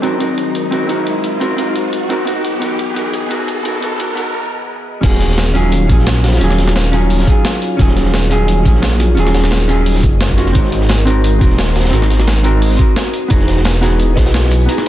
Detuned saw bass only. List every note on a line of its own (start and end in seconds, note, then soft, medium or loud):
5.03 5.91 D#1 loud
5.90 6.40 A#1 medium
6.41 7.26 D#1 loud
7.79 8.67 D#1 medium
8.65 9.16 A#1 medium
9.17 10.05 D#1 loud
10.03 10.39 F#1 medium
10.38 10.54 F1 medium
10.55 11.43 G#1 loud
11.41 11.92 D#1 medium
11.93 12.78 G#1 loud
13.31 14.18 E1 loud
14.17 14.67 B1 medium